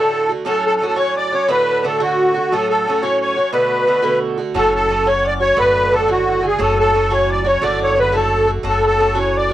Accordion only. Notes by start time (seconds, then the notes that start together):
Already playing: A4
0.47 A4
0.66 A4
0.76 A4
0.87 A4
0.99 C#5
1.18 D5
1.34 C#5
1.51 B4
1.86 A4
2.02 F#4
2.52 A4
2.70 A4
3.03 C#5
3.21 C#5
3.53 B4
4.56 A4
4.75 A4
5.08 C#5
5.27 D5
5.42 C#5
5.59 B4
5.94 A4
6.11 F#4
6.47 G#4
6.62 A4
6.80 A4
7.12 C#5
7.32 D5
7.48 C#5
7.62 D5
7.83 C#5
8.00 B4
8.15 A4
8.69 A4
8.87 A4
9.19 C#5
9.37 D5